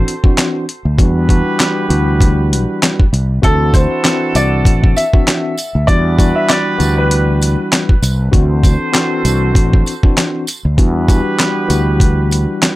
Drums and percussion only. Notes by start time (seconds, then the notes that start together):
0.08 closed hi-hat
0.24 kick
0.38 snare, clap, closed hi-hat
0.69 closed hi-hat
0.99 kick, closed hi-hat
1.29 kick, closed hi-hat
1.60 snare, clap, closed hi-hat
1.90 closed hi-hat
2.21 kick, closed hi-hat
2.53 closed hi-hat
2.83 snare, clap, closed hi-hat
3.00 kick
3.14 closed hi-hat
3.43 kick, closed hi-hat
3.74 kick, closed hi-hat, tambourine
4.05 snare, clap, closed hi-hat
4.35 closed hi-hat, tambourine
4.65 kick, closed hi-hat
4.84 kick
4.97 closed hi-hat, tambourine
5.13 kick
5.28 snare, clap, closed hi-hat
5.58 closed hi-hat, tambourine
5.88 kick, closed hi-hat
6.19 kick, closed hi-hat, tambourine
6.50 snare, clap, closed hi-hat
6.80 closed hi-hat, tambourine
7.11 closed hi-hat
7.41 closed hi-hat, tambourine
7.73 snare, clap, closed hi-hat
7.89 kick
8.03 closed hi-hat, tambourine
8.33 kick, closed hi-hat
8.63 kick, closed hi-hat, tambourine
8.95 snare, clap, closed hi-hat
9.25 closed hi-hat, tambourine
9.55 kick, closed hi-hat
9.73 kick
9.86 closed hi-hat, tambourine
10.03 kick
10.18 snare, clap, closed hi-hat
10.47 closed hi-hat, tambourine
10.78 kick, closed hi-hat
11.08 kick, closed hi-hat, tambourine
11.40 snare, clap, closed hi-hat
11.70 closed hi-hat, tambourine
12.00 kick, closed hi-hat
12.31 closed hi-hat, tambourine
12.63 snare, clap, closed hi-hat